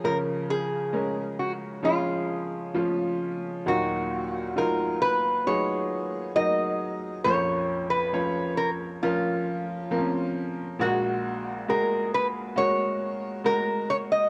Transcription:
<<
  \new Staff \with { instrumentName = "Resonator guitar played with a steel bar" } { \time 4/4 \key ees \minor \tempo 4 = 67 bes'8 aes'4 ges'8 f'4. r8 | ges'4 bes'8 ces''8 des''4 ees''4 | des''8. ces''8. bes'8 f'4. r8 | ges'4 bes'8 ces''8 des''4 bes'8 des''16 ees''16 | }
  \new Staff \with { instrumentName = "Upright piano" } { \time 4/4 \key ees \minor <f des' bes'>4 <aes des' bes'>4 <f des' aes'>4 <f des' f'>4 | <ges ees' bes'>4 <ges ees' f'>4 <ges ees' aes'>4 <ges ees' bes'>4 | <f des' bes'>4 <f des' des''>4 <f des' bes'>4 <f c' des' bes'>4 | <aes ges' bes'>4 <aes ges' aes'>4 <aes ges' bes'>4 <aes ges' bes'>4 | }
  \new Staff \with { instrumentName = "Upright piano" } { \clef bass \time 4/4 \key ees \minor des1 | <ees, bes,>1 | <bes,, f,>1 | <bes,, bes,>1 | }
>>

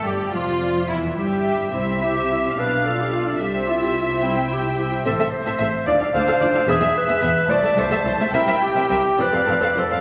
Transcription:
<<
  \new Staff \with { instrumentName = "Violin section" } { \time 6/8 \key c \major \tempo 4. = 72 g'8 f'4 e'8 g'4 | e''4. f''4. | e''2. | \key a \minor e''16 e''16 r16 e''16 e''16 r16 d''16 f''16 f''16 f''16 d''16 f''16 |
e''16 e''16 r16 e''16 e''16 r16 c''16 e''16 e''16 e''16 c''16 e''16 | e''16 e''16 r16 e''16 e''16 r16 c''16 f''16 f''16 f''16 c''16 f''16 | }
  \new Staff \with { instrumentName = "Violin section" } { \time 6/8 \key c \major d''4. e''4.~ | e''4. d''4. | e''4. g''4. | \key a \minor c''4. f''4. |
e''4. a''4. | g''4. d''4. | }
  \new Staff \with { instrumentName = "Clarinet" } { \time 6/8 \key c \major g'8 f'4 e'8 g'4 | e'8 g'4 b'8 a'4 | g'8 f'4 e'8 g'8 r8 | \key a \minor a'8 c''4 d''8 c''4 |
gis'8 b'4 d''8 c''4 | e'8 g'4 b'4 a'8 | }
  \new Staff \with { instrumentName = "Viola section" } { \time 6/8 \key c \major << { g8 f4 e8 g4 | g16 c'16 e'16 g'16 e'16 c'16 b16 d'16 f'16 g'16 f'16 d'16 | g16 c'16 e'16 g'16 e'16 c'16 g16 c'16 e'16 g'16 e'16 c'16 | \key a \minor a'16 a'16 r16 a'16 a'16 r16 f'16 a'16 a'16 a'16 f'16 a'16 |
gis'16 gis'16 r16 gis'16 gis'16 r16 e'16 a'16 a'16 a'16 e'16 a'16 | bes'16 bes'16 r16 bes'16 bes'16 r16 f'16 a'16 a'16 a'16 f'16 a'16 | } \\ { r2. | c'4. d'4.~ | d'4. c'4. | c'16 c'16 r16 c'16 c'16 r16 d'16 d'16 d'16 d'16 d'16 d'16 |
b16 b16 r16 b16 b16 r16 a16 a16 a16 a16 a16 a16 | c'16 c'16 r16 c'16 c'16 r16 c'16 c'16 c'16 c'16 c'16 c'16 | } >> }
  \new Staff \with { instrumentName = "Cello section" } { \clef bass \time 6/8 \key c \major g,8 f,4 e,8 g,4 | c4. b,4. | c2. | \key a \minor a,16 a,16 r16 a,16 a,16 r16 d,16 d,16 d,16 d,16 d,16 d,16 |
e,16 e,16 r16 e,16 e,16 r16 c,16 c,16 c,16 c,16 c,16 c,16 | c,16 c,16 r16 c,16 c,16 r16 f,16 f,16 f,16 f,16 f,16 f,16 | }
  \new Staff \with { instrumentName = "Double bass section" } { \clef bass \time 6/8 \key c \major g,,8 f,,4 e,,8 g,,4 | c,4. b,,4. | c,2. | \key a \minor a,,16 r8. a,,16 r16 d,16 r16 d,16 r16 d,16 r16 |
e,,16 r8. e,,16 r16 c,16 r16 c,16 r16 c,16 r16 | c,16 r8. c,16 r16 f,,16 r16 f,,16 r16 f,,16 r16 | }
>>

